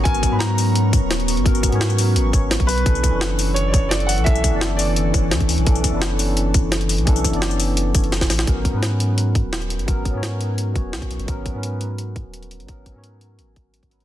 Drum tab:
HH |x-x-x-o-x-x-xxox|x-xxx-o-x-x-xxox|x-x-x-o-x-x-xxox|x-x-x-o-x-x-xxox|
TB |-xx---x---x---x-|-xx--xx---x---x-|-xx---x---x---x-|-xx---x---x---x-|
SD |----o-------o---|----o-------o---|----o-------o---|----o-------o---|
BD |o-o-------o-----|o-o-------o--o--|o-o-------o-----|o-o-------o--o--|

HH |x-x-x-o-x-x-xxox|x-xxx-o-x-xxxxox|x-x-x-x-x-x-xxxx|x-x-x-x-x-x-xxxx|
TB |-xx---x---x---x-|-xx--xx---x---x-|----------------|----------------|
SD |----o-------o---|----o-------oooo|----o-------o---|----o-------o---|
BD |o-o-------o-----|o-o-------o--o--|o-o-------o-----|o-o-------o--o--|

HH |x-x-x-x-x-x-xxxx|x-x-x-x-x-x-xxxx|
TB |----------------|----------------|
SD |----------------|----------------|
BD |o-o-------o-----|o-o-------o--o--|